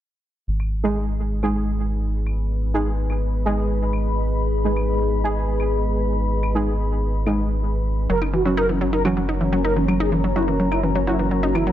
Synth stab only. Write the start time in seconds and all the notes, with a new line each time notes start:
0.84 G#3 D#4 G#4
1.43 G#3 D#4 G#4
2.74 G#3 D#4 G#4
3.46 G#3 D#4 G#4
4.65 G#3 D#4 G#4
5.24 G#3 D#4 G#4
6.55 G#3 D#4 G#4
7.26 G#3 D#4 G#4
8.46 F#3 C#4 F#4
9.05 F#3 C#4 F#4
10.36 F#3 C#4 F#4
11.07 F#3 C#4 F#4